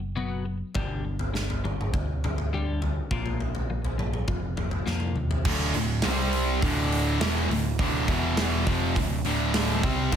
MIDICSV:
0, 0, Header, 1, 5, 480
1, 0, Start_track
1, 0, Key_signature, -1, "minor"
1, 0, Tempo, 585938
1, 622, Time_signature, 4, 2, 24, 8
1, 8324, End_track
2, 0, Start_track
2, 0, Title_t, "Clean electric guitar"
2, 0, Program_c, 0, 27
2, 0, Note_on_c, 0, 47, 62
2, 0, Note_on_c, 0, 54, 68
2, 117, Note_off_c, 0, 47, 0
2, 118, Note_off_c, 0, 54, 0
2, 128, Note_on_c, 0, 47, 91
2, 130, Note_on_c, 0, 54, 84
2, 137, Note_on_c, 0, 59, 97
2, 360, Note_off_c, 0, 47, 0
2, 361, Note_off_c, 0, 54, 0
2, 365, Note_off_c, 0, 59, 0
2, 369, Note_on_c, 0, 47, 72
2, 374, Note_on_c, 0, 54, 69
2, 592, Note_off_c, 0, 47, 0
2, 594, Note_off_c, 0, 54, 0
2, 616, Note_on_c, 0, 43, 78
2, 617, Note_on_c, 0, 50, 87
2, 623, Note_on_c, 0, 55, 80
2, 846, Note_off_c, 0, 43, 0
2, 846, Note_off_c, 0, 50, 0
2, 849, Note_off_c, 0, 55, 0
2, 857, Note_on_c, 0, 43, 61
2, 859, Note_on_c, 0, 50, 68
2, 1077, Note_off_c, 0, 43, 0
2, 1078, Note_off_c, 0, 50, 0
2, 1095, Note_on_c, 0, 43, 67
2, 1098, Note_on_c, 0, 50, 76
2, 1316, Note_off_c, 0, 43, 0
2, 1318, Note_off_c, 0, 50, 0
2, 1344, Note_on_c, 0, 43, 62
2, 1347, Note_on_c, 0, 50, 69
2, 1561, Note_off_c, 0, 43, 0
2, 1563, Note_off_c, 0, 50, 0
2, 1585, Note_on_c, 0, 43, 60
2, 1587, Note_on_c, 0, 50, 65
2, 1802, Note_off_c, 0, 43, 0
2, 1803, Note_off_c, 0, 50, 0
2, 1839, Note_on_c, 0, 43, 57
2, 1841, Note_on_c, 0, 50, 71
2, 2050, Note_off_c, 0, 43, 0
2, 2051, Note_off_c, 0, 50, 0
2, 2073, Note_on_c, 0, 50, 87
2, 2074, Note_on_c, 0, 43, 81
2, 2082, Note_on_c, 0, 55, 101
2, 2297, Note_off_c, 0, 43, 0
2, 2297, Note_off_c, 0, 50, 0
2, 2301, Note_off_c, 0, 55, 0
2, 2308, Note_on_c, 0, 43, 69
2, 2309, Note_on_c, 0, 50, 71
2, 2525, Note_off_c, 0, 43, 0
2, 2525, Note_off_c, 0, 50, 0
2, 2549, Note_on_c, 0, 46, 80
2, 2554, Note_on_c, 0, 53, 85
2, 2554, Note_on_c, 0, 58, 84
2, 2776, Note_off_c, 0, 46, 0
2, 2778, Note_off_c, 0, 53, 0
2, 2778, Note_off_c, 0, 58, 0
2, 2791, Note_on_c, 0, 53, 65
2, 2792, Note_on_c, 0, 46, 59
2, 3007, Note_off_c, 0, 53, 0
2, 3008, Note_off_c, 0, 46, 0
2, 3030, Note_on_c, 0, 46, 74
2, 3032, Note_on_c, 0, 53, 82
2, 3247, Note_off_c, 0, 46, 0
2, 3248, Note_off_c, 0, 53, 0
2, 3260, Note_on_c, 0, 46, 59
2, 3261, Note_on_c, 0, 53, 59
2, 3482, Note_off_c, 0, 46, 0
2, 3483, Note_off_c, 0, 53, 0
2, 3504, Note_on_c, 0, 46, 54
2, 3507, Note_on_c, 0, 53, 73
2, 3724, Note_off_c, 0, 46, 0
2, 3726, Note_off_c, 0, 53, 0
2, 3745, Note_on_c, 0, 46, 62
2, 3750, Note_on_c, 0, 53, 64
2, 3965, Note_off_c, 0, 46, 0
2, 3967, Note_off_c, 0, 53, 0
2, 3980, Note_on_c, 0, 46, 85
2, 3988, Note_on_c, 0, 53, 91
2, 3994, Note_on_c, 0, 58, 87
2, 4212, Note_off_c, 0, 46, 0
2, 4216, Note_off_c, 0, 53, 0
2, 4219, Note_off_c, 0, 58, 0
2, 4231, Note_on_c, 0, 46, 64
2, 4239, Note_on_c, 0, 53, 67
2, 4448, Note_off_c, 0, 46, 0
2, 4452, Note_off_c, 0, 53, 0
2, 8324, End_track
3, 0, Start_track
3, 0, Title_t, "Distorted electric guitar"
3, 0, Program_c, 1, 30
3, 4478, Note_on_c, 1, 38, 97
3, 4482, Note_on_c, 1, 45, 99
3, 4483, Note_on_c, 1, 50, 98
3, 4708, Note_off_c, 1, 38, 0
3, 4711, Note_off_c, 1, 45, 0
3, 4711, Note_off_c, 1, 50, 0
3, 4720, Note_on_c, 1, 38, 62
3, 4722, Note_on_c, 1, 45, 68
3, 4909, Note_off_c, 1, 38, 0
3, 4910, Note_off_c, 1, 45, 0
3, 4945, Note_on_c, 1, 48, 97
3, 4949, Note_on_c, 1, 55, 94
3, 4959, Note_on_c, 1, 60, 105
3, 5416, Note_off_c, 1, 48, 0
3, 5419, Note_on_c, 1, 38, 86
3, 5423, Note_off_c, 1, 55, 0
3, 5429, Note_off_c, 1, 60, 0
3, 5431, Note_on_c, 1, 45, 93
3, 5433, Note_on_c, 1, 50, 85
3, 5898, Note_off_c, 1, 38, 0
3, 5900, Note_off_c, 1, 45, 0
3, 5903, Note_on_c, 1, 47, 80
3, 5904, Note_on_c, 1, 40, 87
3, 5905, Note_off_c, 1, 50, 0
3, 5909, Note_on_c, 1, 52, 99
3, 6139, Note_off_c, 1, 40, 0
3, 6140, Note_off_c, 1, 47, 0
3, 6142, Note_on_c, 1, 38, 62
3, 6143, Note_off_c, 1, 52, 0
3, 6144, Note_on_c, 1, 45, 76
3, 6338, Note_off_c, 1, 38, 0
3, 6339, Note_off_c, 1, 45, 0
3, 6376, Note_on_c, 1, 38, 90
3, 6382, Note_on_c, 1, 45, 97
3, 6390, Note_on_c, 1, 50, 104
3, 6619, Note_off_c, 1, 38, 0
3, 6619, Note_on_c, 1, 40, 87
3, 6624, Note_off_c, 1, 45, 0
3, 6624, Note_on_c, 1, 47, 97
3, 6625, Note_off_c, 1, 50, 0
3, 6625, Note_on_c, 1, 52, 107
3, 7095, Note_off_c, 1, 40, 0
3, 7098, Note_off_c, 1, 47, 0
3, 7098, Note_on_c, 1, 41, 89
3, 7099, Note_off_c, 1, 52, 0
3, 7103, Note_on_c, 1, 48, 92
3, 7104, Note_on_c, 1, 53, 105
3, 7335, Note_off_c, 1, 41, 0
3, 7337, Note_off_c, 1, 48, 0
3, 7338, Note_off_c, 1, 53, 0
3, 7340, Note_on_c, 1, 38, 66
3, 7345, Note_on_c, 1, 45, 68
3, 7535, Note_off_c, 1, 38, 0
3, 7537, Note_off_c, 1, 45, 0
3, 7580, Note_on_c, 1, 45, 94
3, 7581, Note_on_c, 1, 38, 96
3, 7585, Note_on_c, 1, 50, 108
3, 8049, Note_off_c, 1, 38, 0
3, 8052, Note_on_c, 1, 48, 86
3, 8054, Note_off_c, 1, 45, 0
3, 8056, Note_off_c, 1, 50, 0
3, 8057, Note_on_c, 1, 55, 97
3, 8061, Note_on_c, 1, 60, 116
3, 8279, Note_off_c, 1, 48, 0
3, 8283, Note_on_c, 1, 38, 92
3, 8285, Note_off_c, 1, 55, 0
3, 8286, Note_off_c, 1, 60, 0
3, 8288, Note_on_c, 1, 45, 105
3, 8289, Note_on_c, 1, 50, 98
3, 8324, Note_off_c, 1, 38, 0
3, 8324, Note_off_c, 1, 45, 0
3, 8324, Note_off_c, 1, 50, 0
3, 8324, End_track
4, 0, Start_track
4, 0, Title_t, "Picked electric bass"
4, 0, Program_c, 2, 34
4, 0, Note_on_c, 2, 30, 88
4, 498, Note_off_c, 2, 30, 0
4, 618, Note_on_c, 2, 31, 82
4, 1587, Note_off_c, 2, 31, 0
4, 1587, Note_on_c, 2, 38, 89
4, 2431, Note_off_c, 2, 38, 0
4, 2548, Note_on_c, 2, 34, 71
4, 3506, Note_off_c, 2, 34, 0
4, 3506, Note_on_c, 2, 29, 90
4, 3930, Note_off_c, 2, 29, 0
4, 3988, Note_on_c, 2, 41, 78
4, 4206, Note_off_c, 2, 41, 0
4, 4226, Note_on_c, 2, 39, 70
4, 4445, Note_off_c, 2, 39, 0
4, 4467, Note_on_c, 2, 26, 88
4, 4693, Note_off_c, 2, 26, 0
4, 4705, Note_on_c, 2, 26, 91
4, 4932, Note_off_c, 2, 26, 0
4, 4944, Note_on_c, 2, 36, 101
4, 5395, Note_off_c, 2, 36, 0
4, 5428, Note_on_c, 2, 26, 96
4, 5877, Note_off_c, 2, 26, 0
4, 5906, Note_on_c, 2, 28, 94
4, 6131, Note_off_c, 2, 28, 0
4, 6139, Note_on_c, 2, 26, 88
4, 6367, Note_off_c, 2, 26, 0
4, 6383, Note_on_c, 2, 26, 92
4, 6609, Note_off_c, 2, 26, 0
4, 6622, Note_on_c, 2, 28, 92
4, 7072, Note_off_c, 2, 28, 0
4, 7100, Note_on_c, 2, 29, 101
4, 7326, Note_off_c, 2, 29, 0
4, 7341, Note_on_c, 2, 26, 90
4, 7566, Note_off_c, 2, 26, 0
4, 7580, Note_on_c, 2, 26, 100
4, 8028, Note_off_c, 2, 26, 0
4, 8054, Note_on_c, 2, 36, 99
4, 8281, Note_off_c, 2, 36, 0
4, 8295, Note_on_c, 2, 26, 91
4, 8324, Note_off_c, 2, 26, 0
4, 8324, End_track
5, 0, Start_track
5, 0, Title_t, "Drums"
5, 610, Note_on_c, 9, 43, 82
5, 616, Note_on_c, 9, 36, 99
5, 692, Note_off_c, 9, 43, 0
5, 698, Note_off_c, 9, 36, 0
5, 978, Note_on_c, 9, 43, 76
5, 1060, Note_off_c, 9, 43, 0
5, 1106, Note_on_c, 9, 38, 72
5, 1188, Note_off_c, 9, 38, 0
5, 1229, Note_on_c, 9, 43, 77
5, 1311, Note_off_c, 9, 43, 0
5, 1353, Note_on_c, 9, 47, 68
5, 1435, Note_off_c, 9, 47, 0
5, 1480, Note_on_c, 9, 47, 73
5, 1562, Note_off_c, 9, 47, 0
5, 1586, Note_on_c, 9, 36, 101
5, 1593, Note_on_c, 9, 43, 80
5, 1668, Note_off_c, 9, 36, 0
5, 1675, Note_off_c, 9, 43, 0
5, 1835, Note_on_c, 9, 43, 78
5, 1835, Note_on_c, 9, 47, 73
5, 1917, Note_off_c, 9, 43, 0
5, 1917, Note_off_c, 9, 47, 0
5, 1951, Note_on_c, 9, 43, 82
5, 2033, Note_off_c, 9, 43, 0
5, 2310, Note_on_c, 9, 43, 79
5, 2392, Note_off_c, 9, 43, 0
5, 2547, Note_on_c, 9, 36, 98
5, 2547, Note_on_c, 9, 43, 83
5, 2628, Note_off_c, 9, 43, 0
5, 2629, Note_off_c, 9, 36, 0
5, 2667, Note_on_c, 9, 43, 80
5, 2749, Note_off_c, 9, 43, 0
5, 2789, Note_on_c, 9, 43, 69
5, 2871, Note_off_c, 9, 43, 0
5, 2906, Note_on_c, 9, 43, 77
5, 2988, Note_off_c, 9, 43, 0
5, 3150, Note_on_c, 9, 43, 75
5, 3232, Note_off_c, 9, 43, 0
5, 3270, Note_on_c, 9, 47, 76
5, 3352, Note_off_c, 9, 47, 0
5, 3387, Note_on_c, 9, 47, 72
5, 3469, Note_off_c, 9, 47, 0
5, 3504, Note_on_c, 9, 43, 85
5, 3507, Note_on_c, 9, 36, 96
5, 3586, Note_off_c, 9, 43, 0
5, 3589, Note_off_c, 9, 36, 0
5, 3746, Note_on_c, 9, 43, 79
5, 3746, Note_on_c, 9, 47, 69
5, 3828, Note_off_c, 9, 43, 0
5, 3828, Note_off_c, 9, 47, 0
5, 3861, Note_on_c, 9, 43, 77
5, 3943, Note_off_c, 9, 43, 0
5, 3985, Note_on_c, 9, 38, 54
5, 4067, Note_off_c, 9, 38, 0
5, 4096, Note_on_c, 9, 48, 55
5, 4178, Note_off_c, 9, 48, 0
5, 4224, Note_on_c, 9, 45, 66
5, 4305, Note_off_c, 9, 45, 0
5, 4348, Note_on_c, 9, 43, 78
5, 4430, Note_off_c, 9, 43, 0
5, 4463, Note_on_c, 9, 49, 127
5, 4466, Note_on_c, 9, 36, 120
5, 4545, Note_off_c, 9, 49, 0
5, 4548, Note_off_c, 9, 36, 0
5, 4700, Note_on_c, 9, 46, 58
5, 4782, Note_off_c, 9, 46, 0
5, 4932, Note_on_c, 9, 46, 90
5, 4933, Note_on_c, 9, 38, 114
5, 5014, Note_off_c, 9, 46, 0
5, 5015, Note_off_c, 9, 38, 0
5, 5181, Note_on_c, 9, 46, 61
5, 5263, Note_off_c, 9, 46, 0
5, 5427, Note_on_c, 9, 36, 106
5, 5433, Note_on_c, 9, 46, 94
5, 5509, Note_off_c, 9, 36, 0
5, 5515, Note_off_c, 9, 46, 0
5, 5670, Note_on_c, 9, 46, 72
5, 5752, Note_off_c, 9, 46, 0
5, 5907, Note_on_c, 9, 38, 127
5, 5907, Note_on_c, 9, 46, 94
5, 5988, Note_off_c, 9, 46, 0
5, 5989, Note_off_c, 9, 38, 0
5, 6153, Note_on_c, 9, 46, 71
5, 6235, Note_off_c, 9, 46, 0
5, 6383, Note_on_c, 9, 36, 110
5, 6383, Note_on_c, 9, 46, 81
5, 6465, Note_off_c, 9, 36, 0
5, 6465, Note_off_c, 9, 46, 0
5, 6620, Note_on_c, 9, 36, 107
5, 6620, Note_on_c, 9, 46, 67
5, 6702, Note_off_c, 9, 36, 0
5, 6702, Note_off_c, 9, 46, 0
5, 6859, Note_on_c, 9, 38, 123
5, 6859, Note_on_c, 9, 46, 86
5, 6941, Note_off_c, 9, 38, 0
5, 6941, Note_off_c, 9, 46, 0
5, 7101, Note_on_c, 9, 36, 103
5, 7106, Note_on_c, 9, 46, 63
5, 7183, Note_off_c, 9, 36, 0
5, 7188, Note_off_c, 9, 46, 0
5, 7342, Note_on_c, 9, 36, 103
5, 7346, Note_on_c, 9, 46, 86
5, 7424, Note_off_c, 9, 36, 0
5, 7428, Note_off_c, 9, 46, 0
5, 7573, Note_on_c, 9, 46, 64
5, 7655, Note_off_c, 9, 46, 0
5, 7815, Note_on_c, 9, 46, 92
5, 7816, Note_on_c, 9, 38, 126
5, 7897, Note_off_c, 9, 46, 0
5, 7898, Note_off_c, 9, 38, 0
5, 8056, Note_on_c, 9, 36, 105
5, 8057, Note_on_c, 9, 46, 54
5, 8138, Note_off_c, 9, 36, 0
5, 8139, Note_off_c, 9, 46, 0
5, 8292, Note_on_c, 9, 57, 112
5, 8294, Note_on_c, 9, 36, 103
5, 8324, Note_off_c, 9, 36, 0
5, 8324, Note_off_c, 9, 57, 0
5, 8324, End_track
0, 0, End_of_file